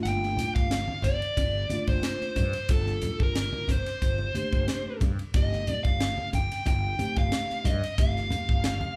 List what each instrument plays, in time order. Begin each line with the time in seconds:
Already playing: tine electric piano A3 A#3 D4 F4
0.03 fretless electric bass G1, lead electric guitar G5, flute G5, hi-hat pedal, ride
0.23 snare
0.36 hi-hat pedal, ride, low conga
0.55 fretless electric bass G1, lead electric guitar F5, flute F5, kick, ride
0.71 snare, hi-hat pedal, ride
0.88 high conga
1.02 fretless electric bass G1, lead electric guitar D5, flute D5, kick, hi-hat pedal, ride, low conga
1.22 ride
1.37 fretless electric bass G1, kick, hi-hat pedal, ride, low conga
1.70 tine electric piano A3 A#3 D4 F4, hi-hat pedal, ride, high conga
1.87 fretless electric bass G1, lead electric guitar C5, flute C5, kick, ride
2.03 snare, hi-hat pedal, ride
2.21 muted fretless electric bass stroke, snare
2.36 fretless electric bass G2, flute C5, lead electric guitar C5, kick, hi-hat pedal, ride, low conga
2.53 snare, ride
2.69 fretless electric bass G1, tine electric piano G3 A#3 D4 F4, flute A4, lead electric guitar A4, kick, hi-hat pedal, ride
2.86 snare
3.01 hi-hat pedal, ride, low conga
3.20 fretless electric bass G1, flute A#4, lead electric guitar A#4, kick
3.35 snare, hi-hat pedal, ride
3.53 high conga
3.67 fretless electric bass G1, flute C5, lead electric guitar C5, kick, hi-hat pedal, ride, low conga
3.86 snare, ride
4.02 fretless electric bass G1, kick, hi-hat pedal, ride
4.18 high conga
4.34 tine electric piano A3 A#3 D4 G4, muted fretless electric bass stroke, hi-hat pedal, ride, high conga
4.52 fretless electric bass G1, kick, ride
4.68 snare, hi-hat pedal, ride
4.86 muted fretless electric bass stroke
5.00 fretless electric bass G2, kick, hi-hat pedal, ride, low conga
5.19 ride
5.34 fretless electric bass G1, tine electric piano A3 C4 D#4 G4, flute D#5, lead electric guitar D#5, kick, hi-hat pedal, ride
5.52 snare
5.67 flute D5, lead electric guitar D5, hi-hat pedal, ride, low conga
5.83 fretless electric bass G1, lead electric guitar F5, flute F5, kick, ride
6.00 snare, hi-hat pedal, ride
6.18 high conga
6.33 fretless electric bass G1, flute G5, lead electric guitar G5, kick, hi-hat pedal, ride, low conga
6.52 snare, ride
6.66 fretless electric bass G1, flute G5, lead electric guitar G5, kick, hi-hat pedal, ride, low conga
6.99 tine electric piano A3 C4 D#4 G4, muted fretless electric bass stroke, hi-hat pedal, ride, high conga
7.16 fretless electric bass G1, flute F5, lead electric guitar F5, kick, ride
7.32 snare, hi-hat pedal, ride
7.50 muted fretless electric bass stroke, snare
7.64 fretless electric bass G2, flute D#5, lead electric guitar D#5, kick, hi-hat pedal, ride, low conga
7.84 snare, ride
7.98 fretless electric bass G1, tine electric piano A3 C4 D#4 G4, flute F5, lead electric guitar F5, kick, hi-hat pedal, ride
8.16 snare
8.30 hi-hat pedal, ride, low conga
8.49 fretless electric bass G1, kick
8.64 snare, hi-hat pedal, ride
8.81 high conga